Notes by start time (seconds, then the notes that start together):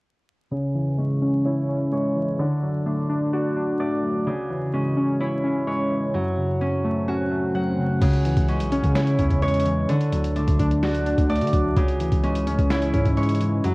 0.51 C#3
0.75 E3
0.98 G#3 C#4
1.22 C#4
1.45 E4 C#5
1.69 C#4
1.92 G#3 C#5
2.16 E3
2.39 D3
2.62 F#3
2.86 A3 D4
3.09 D4
3.33 F#4 D5
3.56 D4
3.80 A3 D5
4.03 F#3
4.26 C#3, swell
4.50 E3
4.73 G#3 C#4
4.97 C#4
5.20 E4 C#5
5.44 C#4
5.67 G#3 C#5
5.91 E3
6.14 F#2 F#3
6.37 C#3
6.61 F#3 C#4
6.84 A3
7.08 C#4 F#4
7.31 A3
7.55 F#3 F#5
7.78 C#3
8.02 C#2 C#3, kick, closed hi-hat, crash
8.13 closed hi-hat
8.25 E3, closed hi-hat
8.37 C#2, kick, closed hi-hat
8.48 G#3 C#4, closed hi-hat
8.60 B1, closed hi-hat
8.72 C#4, closed hi-hat
8.84 C#3, kick, closed hi-hat
8.95 E4 C#5, snare, clap, closed hi-hat
9.07 closed hi-hat
9.19 E2 C#4, kick, closed hi-hat
9.30 kick, closed hi-hat
9.42 G#3 C#5, closed hi-hat
9.48 closed hi-hat
9.54 closed hi-hat
9.60 closed hi-hat
9.66 E3, closed hi-hat
9.89 D3, closed hi-hat
10.01 closed hi-hat
10.12 D2 F#3, closed hi-hat
10.24 closed hi-hat
10.36 C#2 A3 D4, closed hi-hat
10.48 D2, kick, closed hi-hat
10.59 D4, kick, closed hi-hat
10.71 closed hi-hat
10.83 F#4 D5, snare, clap, closed hi-hat
10.95 closed hi-hat
11.06 D4, closed hi-hat
11.18 D2, kick, closed hi-hat
11.30 A3 D5, closed hi-hat
11.36 closed hi-hat
11.41 D3, closed hi-hat
11.47 closed hi-hat
11.53 D2 F#3, kick, closed hi-hat
11.77 C#2 C#3, kick, closed hi-hat
11.88 closed hi-hat
12.00 D2 E3, closed hi-hat
12.12 C#2, kick, closed hi-hat
12.23 G#3 C#4, closed hi-hat
12.35 closed hi-hat
12.47 D2 C#4, closed hi-hat
12.59 C#2, kick, closed hi-hat
12.70 E4 C#5, snare, clap, closed hi-hat
12.82 closed hi-hat
12.94 G#2 C#4, kick, closed hi-hat
13.05 kick, closed hi-hat
13.17 G#3 C#5, closed hi-hat
13.23 closed hi-hat
13.29 closed hi-hat
13.35 closed hi-hat
13.41 E3, closed hi-hat
13.64 F#2 F#3, closed hi-hat